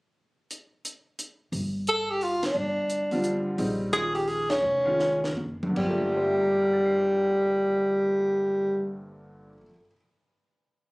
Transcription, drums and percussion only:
0.51 closed hi-hat medium
0.85 closed hi-hat medium
1.19 closed hi-hat medium
1.53 open hi-hat soft
1.87 closed hi-hat soft
2.21 open hi-hat soft
2.43 snare medium
2.43 ride medium
2.90 closed hi-hat medium
3.11 open hi-hat soft
3.24 closed hi-hat soft
3.58 open hi-hat soft
3.93 closed hi-hat medium
4.15 open hi-hat soft
4.28 open hi-hat soft
4.50 snare medium
4.50 ride medium
4.99 snare medium
5.24 snare medium
5.37 high tom medium
5.63 mid tom medium
5.76 kick soft
5.76 crash medium
6.02 cymbal swell soft

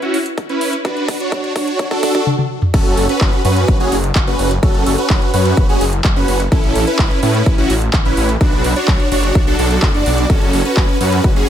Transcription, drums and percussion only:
0.02 closed hi-hat soft
0.14 open hi-hat loud
0.26 closed hi-hat medium
0.38 kick loud
0.38 closed hi-hat soft
0.49 closed hi-hat soft
0.61 open hi-hat loud
0.73 closed hi-hat medium
0.85 kick loud
0.85 closed hi-hat soft
0.97 closed hi-hat soft
1.08 kick loud
1.08 open hi-hat loud
1.20 closed hi-hat medium
1.32 kick loud
1.32 closed hi-hat soft
1.44 closed hi-hat soft
1.56 kick loud
1.56 open hi-hat loud
1.68 closed hi-hat soft
1.79 kick loud
1.79 closed hi-hat medium
1.91 kick medium
1.91 closed hi-hat soft
2.03 kick loud
2.03 open hi-hat loud
2.15 kick loud
2.15 closed hi-hat soft
2.27 high tom medium
2.38 high tom medium
2.62 mid tom medium
2.74 kick loud
2.74 closed hi-hat medium
2.74 crash loud
2.86 closed hi-hat soft
2.97 open hi-hat loud
3.09 closed hi-hat medium
3.21 kick loud
3.21 clap loud
3.21 closed hi-hat medium
3.33 closed hi-hat soft
3.45 open hi-hat loud
3.57 closed hi-hat medium
3.68 kick loud
3.68 closed hi-hat medium
3.80 closed hi-hat soft
3.92 open hi-hat loud
4.04 closed hi-hat medium
4.15 kick loud
4.15 clap loud
4.15 closed hi-hat medium
4.27 closed hi-hat soft
4.39 open hi-hat loud
4.51 closed hi-hat medium
4.63 kick loud
4.63 closed hi-hat medium
4.75 closed hi-hat soft
4.86 open hi-hat loud
4.98 closed hi-hat medium
5.10 kick loud
5.10 clap loud
5.10 closed hi-hat medium
5.22 closed hi-hat soft
5.34 open hi-hat loud
5.46 closed hi-hat medium
5.57 kick loud
5.57 closed hi-hat medium
5.69 closed hi-hat soft
5.81 open hi-hat loud
5.93 closed hi-hat medium
6.04 kick loud
6.04 clap loud
6.04 closed hi-hat medium
6.16 closed hi-hat soft
6.28 open hi-hat loud
6.40 closed hi-hat medium
6.52 kick loud
6.52 closed hi-hat medium
6.64 closed hi-hat soft
6.75 open hi-hat loud
6.87 closed hi-hat medium
6.99 kick loud
6.99 clap loud
6.99 closed hi-hat medium
7.11 closed hi-hat soft
7.23 open hi-hat loud
7.35 closed hi-hat medium
7.46 kick loud
7.46 closed hi-hat medium
7.58 closed hi-hat soft
7.70 open hi-hat loud
7.82 closed hi-hat soft
7.93 kick loud
7.93 clap loud
7.93 closed hi-hat medium
8.05 closed hi-hat soft
8.17 open hi-hat loud
8.29 closed hi-hat medium
8.41 kick loud
8.41 closed hi-hat medium
8.53 closed hi-hat soft
8.64 open hi-hat loud
8.76 closed hi-hat medium
8.88 kick loud
8.88 clap loud
8.88 closed hi-hat medium
9.00 closed hi-hat soft
9.12 open hi-hat loud
9.23 closed hi-hat soft
9.35 kick loud
9.35 closed hi-hat soft
9.47 closed hi-hat soft
9.59 open hi-hat loud
9.71 closed hi-hat soft
9.82 kick loud
9.82 clap loud
9.82 closed hi-hat soft
9.94 closed hi-hat soft
10.06 open hi-hat loud
10.18 closed hi-hat medium
10.30 kick loud
10.30 closed hi-hat medium
10.42 closed hi-hat soft
10.53 open hi-hat loud
10.65 closed hi-hat medium
10.77 kick loud
10.77 clap loud
10.77 closed hi-hat soft
10.89 closed hi-hat soft
11.01 open hi-hat loud
11.12 closed hi-hat soft
11.24 kick loud
11.24 closed hi-hat medium
11.36 closed hi-hat soft

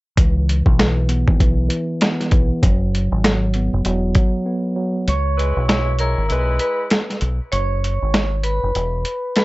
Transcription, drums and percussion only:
0.18 kick loud
0.18 closed hi-hat loud
0.50 closed hi-hat medium
0.66 kick medium
0.79 snare loud
0.79 snare medium
0.79 closed hi-hat loud
1.09 closed hi-hat medium
1.28 kick medium
1.40 kick medium
1.40 closed hi-hat medium
1.70 closed hi-hat medium
2.01 snare loud
2.01 snare medium
2.01 closed hi-hat medium
2.20 snare soft
2.20 closed hi-hat soft
2.31 kick loud
2.31 closed hi-hat medium
2.63 kick loud
2.63 closed hi-hat loud
2.95 closed hi-hat medium
3.24 snare loud
3.24 snare medium
3.24 closed hi-hat medium
3.54 closed hi-hat medium
3.85 closed hi-hat medium
4.15 kick loud
4.15 closed hi-hat medium
5.08 closed hi-hat loud
5.39 closed hi-hat medium
5.69 snare loud
5.69 snare medium
5.69 closed hi-hat loud
5.99 closed hi-hat medium
6.30 closed hi-hat medium
6.60 closed hi-hat medium
6.91 snare loud
6.91 snare medium
6.91 closed hi-hat medium
7.10 snare soft
7.10 closed hi-hat soft
7.21 closed hi-hat medium
7.52 closed hi-hat loud
7.84 closed hi-hat medium
8.14 snare loud
8.14 snare medium
8.14 closed hi-hat medium
8.43 closed hi-hat medium
8.75 closed hi-hat medium
9.05 closed hi-hat medium
9.36 snare loud
9.36 snare medium
9.36 closed hi-hat medium

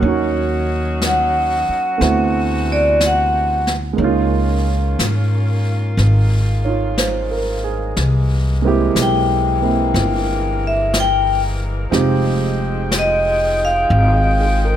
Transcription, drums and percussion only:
0.02 brush sweep soft
1.02 brush sweep soft
1.02 snare soft
1.02 hi-hat pedal medium
2.01 brush sweep soft
2.01 snare soft
3.01 brush sweep soft
3.01 snare soft
3.01 hi-hat pedal medium
3.67 snare soft
3.99 brush sweep soft
4.99 brush sweep soft
4.99 snare soft
4.99 hi-hat pedal medium
5.98 brush sweep soft
5.98 snare soft
6.98 brush sweep soft
6.98 snare soft
6.98 hi-hat pedal medium
7.97 brush sweep soft
7.97 snare soft
8.96 brush sweep soft
8.96 snare soft
8.96 hi-hat pedal soft
9.95 brush sweep soft
9.95 snare soft
10.94 brush sweep soft
10.94 snare medium
10.94 hi-hat pedal medium
11.93 brush sweep soft
11.93 snare soft
12.92 brush sweep soft
12.92 snare medium
12.92 hi-hat pedal medium
13.91 brush sweep soft

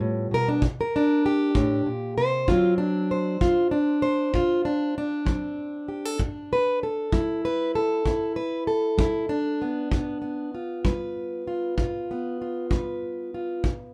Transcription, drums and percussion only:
0.62 kick medium
1.55 kick medium
2.48 kick medium
3.41 kick medium
4.34 kick medium
5.27 kick medium
6.19 kick medium
7.12 kick medium
8.05 kick medium
8.99 kick medium
9.92 kick medium
10.85 kick medium
11.78 kick medium
12.71 kick medium
13.64 kick medium

